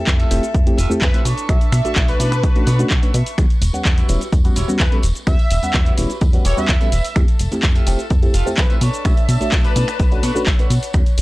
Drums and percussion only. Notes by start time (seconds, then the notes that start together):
0.07 kick, clap, closed hi-hat, shaker
0.20 closed hi-hat
0.31 open hi-hat, shaker
0.43 closed hi-hat, shaker
0.54 kick, closed hi-hat, shaker
0.67 closed hi-hat
0.78 open hi-hat, shaker
0.91 shaker
1.02 kick, clap, closed hi-hat, shaker
1.14 closed hi-hat
1.25 open hi-hat, shaker
1.38 closed hi-hat, shaker
1.49 finger snap, kick, closed hi-hat, shaker
1.61 closed hi-hat
1.72 finger snap, open hi-hat, shaker
1.85 closed hi-hat, shaker
1.96 kick, clap, closed hi-hat, shaker
2.08 closed hi-hat
2.20 open hi-hat, shaker
2.32 finger snap, closed hi-hat, shaker
2.43 kick, closed hi-hat, shaker
2.56 closed hi-hat
2.67 open hi-hat, shaker
2.79 closed hi-hat, shaker
2.90 kick, clap, closed hi-hat, shaker
3.03 closed hi-hat
3.14 open hi-hat, shaker
3.26 open hi-hat, shaker
3.38 finger snap, kick, closed hi-hat, tambourine, shaker
3.50 closed hi-hat, tambourine
3.62 open hi-hat, tambourine, shaker
3.74 closed hi-hat, tambourine, shaker
3.85 kick, clap, closed hi-hat, tambourine, shaker
3.97 closed hi-hat, tambourine
4.08 open hi-hat, tambourine, shaker
4.21 closed hi-hat, tambourine, shaker
4.33 kick, closed hi-hat, tambourine, shaker
4.45 closed hi-hat, tambourine
4.56 open hi-hat, tambourine, shaker
4.68 tambourine, shaker
4.78 kick, clap, closed hi-hat, tambourine, shaker
4.92 closed hi-hat, tambourine
5.03 open hi-hat, tambourine, shaker
5.15 closed hi-hat, tambourine, shaker
5.27 finger snap, kick, closed hi-hat, tambourine, shaker
5.39 closed hi-hat, tambourine
5.50 open hi-hat, tambourine, shaker
5.62 closed hi-hat, tambourine, shaker
5.73 kick, clap, closed hi-hat, tambourine, shaker
5.85 closed hi-hat, tambourine
5.98 open hi-hat, tambourine, shaker
6.10 closed hi-hat, tambourine, shaker
6.21 kick, closed hi-hat, tambourine, shaker
6.33 closed hi-hat, tambourine
6.45 open hi-hat, tambourine, shaker
6.57 tambourine, shaker
6.68 kick, clap, closed hi-hat, shaker
6.81 closed hi-hat, tambourine
6.92 open hi-hat, tambourine, shaker
7.04 open hi-hat, tambourine, shaker
7.16 finger snap, kick, closed hi-hat, tambourine, shaker
7.28 closed hi-hat, tambourine
7.39 open hi-hat, tambourine, shaker
7.52 closed hi-hat, tambourine, shaker
7.63 kick, clap, closed hi-hat, tambourine, shaker
7.75 closed hi-hat, tambourine
7.87 open hi-hat, tambourine, shaker
7.99 closed hi-hat, tambourine, shaker
8.10 kick, closed hi-hat, tambourine, shaker
8.22 closed hi-hat, tambourine
8.34 open hi-hat, tambourine, shaker
8.47 tambourine, shaker
8.57 kick, clap, closed hi-hat, tambourine, shaker
8.70 closed hi-hat, tambourine
8.81 open hi-hat, tambourine, shaker
8.93 closed hi-hat, tambourine, shaker
9.05 finger snap, kick, closed hi-hat, tambourine, shaker
9.17 closed hi-hat, tambourine
9.29 open hi-hat, tambourine, shaker
9.41 closed hi-hat, tambourine, shaker
9.52 kick, clap, closed hi-hat, tambourine, shaker
9.64 closed hi-hat, tambourine
9.76 open hi-hat, tambourine, shaker
9.88 finger snap, closed hi-hat, tambourine, shaker
10.00 kick, closed hi-hat, tambourine, shaker
10.11 closed hi-hat, tambourine
10.23 open hi-hat, tambourine, shaker
10.36 tambourine, shaker
10.46 kick, clap, closed hi-hat, tambourine, shaker
10.59 closed hi-hat, tambourine
10.70 open hi-hat, tambourine, shaker
10.83 open hi-hat, tambourine, shaker
10.93 finger snap, kick, closed hi-hat, tambourine, shaker
11.06 closed hi-hat, tambourine
11.17 open hi-hat, tambourine, shaker